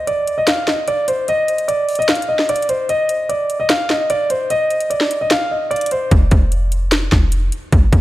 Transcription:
0.07 0.36 D5 medium
0.07 closed hi-hat medium
0.27 closed hi-hat medium
0.38 0.47 D#5 medium
0.47 0.65 F5 medium
0.47 snare loud
0.47 closed hi-hat medium
0.67 0.86 D#5 medium
0.67 snare medium
0.88 1.06 D5 medium
0.88 closed hi-hat medium
1.08 1.26 C5 medium
1.08 closed hi-hat medium
1.28 1.66 D#5 loud
1.28 closed hi-hat medium
1.48 closed hi-hat medium
1.58 closed hi-hat medium
1.68 1.97 D5 medium
1.68 closed hi-hat medium
1.89 closed hi-hat medium
1.89 open hi-hat soft
1.95 2.08 D#5 medium
1.95 closed hi-hat medium
2.02 closed hi-hat medium
2.09 2.27 F5 medium
2.09 snare loud
2.09 closed hi-hat medium
2.15 closed hi-hat medium
2.22 closed hi-hat medium
2.29 2.47 D#5 medium
2.39 snare medium
2.49 2.67 D5 medium
2.49 closed hi-hat medium
2.56 closed hi-hat medium
2.62 closed hi-hat soft
2.69 2.87 C5 medium
2.69 closed hi-hat medium
2.89 3.27 D#5 loud
2.89 closed hi-hat medium
3.09 closed hi-hat medium
3.29 3.58 D5 medium
3.29 closed hi-hat medium
3.50 closed hi-hat medium
3.60 3.69 D#5 medium
3.69 3.87 F5 medium
3.69 snare loud
3.69 closed hi-hat medium
3.90 4.08 D#5 medium
3.90 snare medium
4.10 4.28 D5 medium
4.10 closed hi-hat medium
4.30 4.48 C5 medium
4.30 closed hi-hat medium
4.50 4.88 D#5 loud
4.50 closed hi-hat medium
4.70 closed hi-hat soft
4.81 closed hi-hat medium
4.90 5.19 D5 medium
4.90 closed hi-hat medium
5.01 snare medium
5.11 closed hi-hat medium
5.21 5.30 D#5 medium
5.31 5.49 F5 medium
5.31 snare loud
5.31 closed hi-hat medium
5.51 5.69 D#5 medium
5.71 5.89 D5 medium
5.71 closed hi-hat soft
5.76 closed hi-hat medium
5.81 closed hi-hat medium
5.86 closed hi-hat medium
5.91 6.09 C5 medium
5.91 closed hi-hat medium
6.11 6.31 F1 loud
6.11 kick loud
6.11 closed hi-hat medium
6.31 7.09 F1 loud
6.31 kick loud
6.31 closed hi-hat medium
6.52 closed hi-hat medium
6.72 closed hi-hat medium
6.92 snare loud
6.92 closed hi-hat medium
7.12 7.51 F1 loud
7.12 kick loud
7.12 snare medium
7.32 closed hi-hat medium
7.52 closed hi-hat medium
7.72 7.92 G#1 loud
7.72 kick loud
7.72 closed hi-hat medium
7.93 8.01 G#1 loud
7.93 kick loud
7.93 closed hi-hat medium

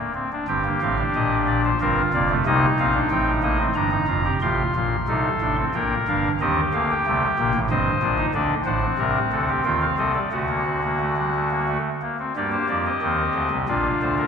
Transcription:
0.00 0.13 A#3 medium
0.15 0.29 C4 medium
0.33 0.47 D4 medium
0.48 0.69 G1 medium
0.48 0.69 G2 medium
0.48 0.62 C4 medium
0.48 1.62 G4 medium
0.48 0.69 G5 medium
0.65 0.79 A#3 medium
0.82 1.02 A1 medium
0.82 1.02 A2 medium
0.82 0.96 C4 medium
0.82 1.02 F5 medium
0.99 1.69 D4 medium
1.15 1.72 A#1 medium
1.15 1.72 A#2 medium
1.15 1.36 D#5 medium
1.47 1.62 D5 medium
1.65 1.79 C5 medium
1.81 2.01 G1 medium
1.81 2.02 G2 medium
1.81 2.01 C4 medium
1.81 2.37 F4 medium
1.81 2.01 A#4 medium
2.13 2.34 F1 medium
2.13 2.34 F2 medium
2.13 2.28 A#3 medium
2.13 2.34 D5 medium
2.30 2.44 A3 medium
2.46 2.66 C2 medium
2.46 2.66 C3 medium
2.46 2.66 A#3 medium
2.46 3.58 D#4 medium
2.46 2.66 D#5 loud
2.79 2.99 A#1 medium
2.79 2.99 A#2 medium
2.79 2.93 C4 medium
2.79 2.99 F5 loud
2.94 3.08 D4 medium
3.11 3.67 A1 medium
3.11 3.67 A2 medium
3.11 3.31 C4 medium
3.11 3.31 G5 medium
3.43 3.57 A#3 medium
3.43 3.63 D#5 medium
3.59 3.74 C4 medium
3.75 3.96 G1 medium
3.75 3.96 G2 medium
3.75 3.90 D4 medium
3.75 4.33 A#5 loud
3.92 4.06 D#4 medium
4.08 4.29 F1 medium
4.08 4.29 F2 medium
4.08 4.23 F4 medium
4.25 4.39 G4 medium
4.41 4.63 A1 medium
4.41 4.63 A2 medium
4.41 4.73 F4 medium
4.41 4.63 G4 medium
4.41 5.56 C6 medium
4.75 4.96 A#1 medium
4.75 4.96 A#2 medium
4.75 4.96 F4 medium
5.08 5.29 C2 medium
5.08 5.29 C3 medium
5.08 5.29 D#4 medium
5.08 5.65 A4 medium
5.41 5.62 A1 medium
5.41 5.62 A2 medium
5.41 5.56 D4 medium
5.58 5.72 C4 medium
5.74 5.95 A#1 medium
5.74 5.95 A#2 medium
5.74 5.95 A#3 medium
5.74 6.31 A#4 medium
5.74 5.95 G5 medium
6.08 6.28 G1 medium
6.08 6.28 G2 medium
6.08 6.28 D4 medium
6.08 6.28 F5 medium
6.40 6.61 D#2 medium
6.40 6.61 D#3 medium
6.40 6.61 C4 medium
6.40 7.52 G4 medium
6.40 6.61 D#5 medium
6.74 6.94 D2 medium
6.74 6.94 D3 medium
6.74 6.94 A#3 medium
6.74 6.87 F5 medium
6.91 7.60 G5 medium
7.07 7.26 C2 medium
7.07 7.26 C3 medium
7.07 7.26 A3 medium
7.38 7.52 A#1 medium
7.38 7.52 A#2 medium
7.38 7.58 A#3 medium
7.55 7.68 A1 medium
7.55 7.68 A2 medium
7.70 7.90 G1 medium
7.70 7.90 G2 medium
7.70 7.91 C4 medium
7.70 8.26 C5 medium
7.70 8.26 D#5 medium
8.02 8.22 A#1 medium
8.02 8.22 A#2 medium
8.02 8.16 D4 medium
8.18 8.32 D#4 medium
8.34 8.54 D2 medium
8.34 8.54 D3 medium
8.34 8.54 D4 medium
8.34 8.54 D5 loud
8.66 8.86 A1 medium
8.66 8.86 A2 medium
8.66 8.80 D4 medium
8.66 8.86 C5 medium
8.66 9.50 F#5 medium
8.83 10.10 C4 medium
8.98 9.19 C2 medium
8.98 9.19 C3 medium
8.98 9.19 A#4 medium
9.32 9.52 D2 medium
9.32 9.52 D3 medium
9.32 9.46 A4 medium
9.49 9.63 G4 medium
9.65 9.85 D#2 medium
9.65 9.85 D#3 medium
9.65 9.85 F4 medium
9.65 9.79 G5 medium
9.81 9.95 F5 medium
9.98 10.19 C2 medium
9.98 10.19 C3 medium
9.98 10.19 A4 medium
9.98 10.12 D#5 medium
10.14 10.29 D5 medium
10.32 11.78 D2 medium
10.32 11.78 D3 medium
10.32 10.46 A3 medium
10.32 11.78 F#4 medium
10.32 11.78 F#5 medium
10.49 10.64 A#3 medium
10.66 10.81 C4 medium
10.84 10.98 A#3 medium
11.00 11.15 A3 medium
11.17 11.31 G3 medium
11.35 11.49 A3 medium
11.51 11.65 A#3 medium
11.68 11.89 A3 medium
12.02 12.16 A#3 medium
12.19 12.33 C4 medium
12.36 12.56 G2 medium
12.36 12.56 G3 medium
12.36 12.93 A#3 medium
12.36 13.50 G4 medium
12.36 12.50 D5 medium
12.52 12.66 C5 medium
12.69 12.89 F2 medium
12.69 12.89 F3 medium
12.69 12.83 D5 medium
12.86 13.57 D#5 medium
13.02 13.22 D#2 medium
13.02 13.22 D#3 medium
13.02 13.59 C4 medium
13.34 13.49 D2 medium
13.34 13.48 D3 medium
13.51 13.65 C2 medium
13.51 13.65 C3 medium
13.68 13.89 A#1 medium
13.68 13.88 A#2 medium
13.68 14.25 D4 medium
13.68 14.25 F4 medium
13.68 13.88 D5 medium
14.02 14.22 D2 medium
14.02 14.22 D3 medium
14.02 14.16 C5 medium
14.18 14.27 A#4 medium

